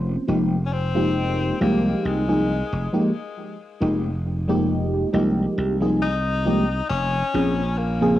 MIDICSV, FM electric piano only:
0, 0, Header, 1, 2, 480
1, 0, Start_track
1, 0, Key_signature, -4, "minor"
1, 0, Tempo, 882353
1, 154, Time_signature, 4, 2, 24, 8
1, 4458, End_track
2, 0, Start_track
2, 0, Title_t, "FM electric piano"
2, 0, Program_c, 0, 5
2, 0, Note_on_c, 0, 53, 70
2, 0, Note_on_c, 0, 58, 64
2, 0, Note_on_c, 0, 60, 64
2, 0, Note_on_c, 0, 61, 64
2, 0, Note_on_c, 0, 72, 78
2, 125, Note_off_c, 0, 53, 0
2, 125, Note_off_c, 0, 58, 0
2, 126, Note_off_c, 0, 60, 0
2, 128, Note_off_c, 0, 61, 0
2, 128, Note_off_c, 0, 72, 0
2, 149, Note_on_c, 0, 53, 73
2, 151, Note_on_c, 0, 56, 65
2, 153, Note_on_c, 0, 58, 62
2, 155, Note_on_c, 0, 63, 65
2, 158, Note_on_c, 0, 67, 82
2, 305, Note_off_c, 0, 53, 0
2, 306, Note_off_c, 0, 56, 0
2, 307, Note_off_c, 0, 58, 0
2, 308, Note_off_c, 0, 63, 0
2, 309, Note_off_c, 0, 67, 0
2, 515, Note_on_c, 0, 53, 87
2, 518, Note_on_c, 0, 56, 84
2, 519, Note_on_c, 0, 58, 79
2, 521, Note_on_c, 0, 63, 80
2, 524, Note_on_c, 0, 67, 93
2, 845, Note_off_c, 0, 53, 0
2, 846, Note_off_c, 0, 56, 0
2, 846, Note_off_c, 0, 58, 0
2, 847, Note_off_c, 0, 63, 0
2, 849, Note_off_c, 0, 67, 0
2, 872, Note_on_c, 0, 53, 89
2, 874, Note_on_c, 0, 56, 77
2, 875, Note_on_c, 0, 58, 79
2, 877, Note_on_c, 0, 63, 78
2, 880, Note_on_c, 0, 67, 93
2, 1210, Note_off_c, 0, 53, 0
2, 1211, Note_off_c, 0, 56, 0
2, 1211, Note_off_c, 0, 58, 0
2, 1212, Note_off_c, 0, 63, 0
2, 1214, Note_off_c, 0, 67, 0
2, 1237, Note_on_c, 0, 53, 81
2, 1240, Note_on_c, 0, 56, 73
2, 1241, Note_on_c, 0, 58, 70
2, 1244, Note_on_c, 0, 63, 74
2, 1246, Note_on_c, 0, 68, 90
2, 1382, Note_off_c, 0, 53, 0
2, 1383, Note_off_c, 0, 56, 0
2, 1384, Note_off_c, 0, 58, 0
2, 1385, Note_off_c, 0, 63, 0
2, 1386, Note_off_c, 0, 68, 0
2, 1591, Note_on_c, 0, 53, 80
2, 1593, Note_on_c, 0, 56, 73
2, 1595, Note_on_c, 0, 58, 70
2, 1597, Note_on_c, 0, 63, 72
2, 1599, Note_on_c, 0, 67, 85
2, 1691, Note_off_c, 0, 53, 0
2, 1692, Note_off_c, 0, 56, 0
2, 1692, Note_off_c, 0, 58, 0
2, 1694, Note_off_c, 0, 63, 0
2, 1694, Note_off_c, 0, 67, 0
2, 2070, Note_on_c, 0, 53, 73
2, 2072, Note_on_c, 0, 56, 68
2, 2074, Note_on_c, 0, 58, 65
2, 2076, Note_on_c, 0, 63, 65
2, 2077, Note_on_c, 0, 67, 82
2, 2225, Note_off_c, 0, 53, 0
2, 2227, Note_off_c, 0, 56, 0
2, 2227, Note_off_c, 0, 58, 0
2, 2228, Note_off_c, 0, 63, 0
2, 2229, Note_off_c, 0, 67, 0
2, 2437, Note_on_c, 0, 53, 85
2, 2440, Note_on_c, 0, 56, 80
2, 2442, Note_on_c, 0, 58, 83
2, 2444, Note_on_c, 0, 63, 81
2, 2445, Note_on_c, 0, 67, 97
2, 2765, Note_off_c, 0, 53, 0
2, 2767, Note_off_c, 0, 56, 0
2, 2768, Note_off_c, 0, 58, 0
2, 2769, Note_off_c, 0, 63, 0
2, 2769, Note_off_c, 0, 67, 0
2, 2791, Note_on_c, 0, 53, 86
2, 2792, Note_on_c, 0, 56, 80
2, 2795, Note_on_c, 0, 58, 76
2, 2797, Note_on_c, 0, 63, 79
2, 2798, Note_on_c, 0, 67, 92
2, 3129, Note_off_c, 0, 53, 0
2, 3130, Note_off_c, 0, 56, 0
2, 3131, Note_off_c, 0, 58, 0
2, 3132, Note_off_c, 0, 63, 0
2, 3133, Note_off_c, 0, 67, 0
2, 3159, Note_on_c, 0, 53, 79
2, 3160, Note_on_c, 0, 56, 74
2, 3162, Note_on_c, 0, 58, 71
2, 3165, Note_on_c, 0, 63, 74
2, 3166, Note_on_c, 0, 68, 91
2, 3303, Note_off_c, 0, 53, 0
2, 3303, Note_off_c, 0, 56, 0
2, 3305, Note_off_c, 0, 58, 0
2, 3306, Note_off_c, 0, 63, 0
2, 3306, Note_off_c, 0, 68, 0
2, 3510, Note_on_c, 0, 53, 78
2, 3513, Note_on_c, 0, 56, 72
2, 3514, Note_on_c, 0, 58, 74
2, 3517, Note_on_c, 0, 63, 72
2, 3519, Note_on_c, 0, 67, 89
2, 3610, Note_off_c, 0, 53, 0
2, 3611, Note_off_c, 0, 56, 0
2, 3612, Note_off_c, 0, 58, 0
2, 3614, Note_off_c, 0, 63, 0
2, 3615, Note_off_c, 0, 67, 0
2, 3991, Note_on_c, 0, 53, 72
2, 3993, Note_on_c, 0, 58, 67
2, 3996, Note_on_c, 0, 60, 65
2, 3997, Note_on_c, 0, 61, 68
2, 3998, Note_on_c, 0, 68, 83
2, 4146, Note_off_c, 0, 53, 0
2, 4147, Note_off_c, 0, 58, 0
2, 4148, Note_off_c, 0, 60, 0
2, 4149, Note_off_c, 0, 61, 0
2, 4150, Note_off_c, 0, 68, 0
2, 4356, Note_on_c, 0, 53, 90
2, 4358, Note_on_c, 0, 58, 85
2, 4361, Note_on_c, 0, 60, 87
2, 4363, Note_on_c, 0, 49, 86
2, 4364, Note_on_c, 0, 68, 103
2, 4458, Note_off_c, 0, 49, 0
2, 4458, Note_off_c, 0, 53, 0
2, 4458, Note_off_c, 0, 58, 0
2, 4458, Note_off_c, 0, 60, 0
2, 4458, Note_off_c, 0, 68, 0
2, 4458, End_track
0, 0, End_of_file